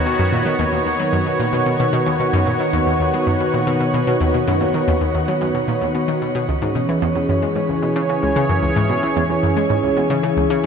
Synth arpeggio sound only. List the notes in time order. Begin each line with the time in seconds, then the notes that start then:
0.06 B2
0.19 F#2
0.33 A#2
0.46 D#3
0.59 D#2
0.73 D#2
0.86 D#2
0.99 F#3
1.13 F#2
1.26 B2
1.40 A#2
1.53 B2
1.66 B2
1.80 B2
1.93 B2
2.06 D#2
2.20 B2
2.33 F#2
2.47 A#2
2.60 D#3
2.73 D#2
2.87 D#2
3.00 D#2
3.14 F#3
3.27 F#2
3.40 B2
3.54 A#2
3.67 B2
3.81 B2
3.94 B2
4.07 B2
4.21 D#2
4.34 B2
4.48 F#2
4.61 A#2
4.74 D#3
4.88 D#2
5.01 D#2
5.15 D#2
5.28 F#3
5.41 F#2
5.55 B2
5.68 A#2
5.81 D#2
5.95 B2
6.08 D#3
6.22 B2
6.35 B2
6.49 C#2
6.62 G#2
6.75 B2
6.89 E3
7.02 E2
7.16 E2
7.29 F#2
7.42 G#3
7.56 G#2
7.69 C#2
7.82 B2
7.96 C#3
8.09 C#3
8.23 C#2
8.36 C#3
8.49 F#2
8.63 C#2
8.76 G#2
8.90 B2
9.03 E3
9.16 E2
9.30 E2
9.43 F#2
9.57 G#3
9.70 G#2
9.83 C#2
9.97 B2
10.10 C#3
10.23 C#3
10.37 C#2
10.50 C#3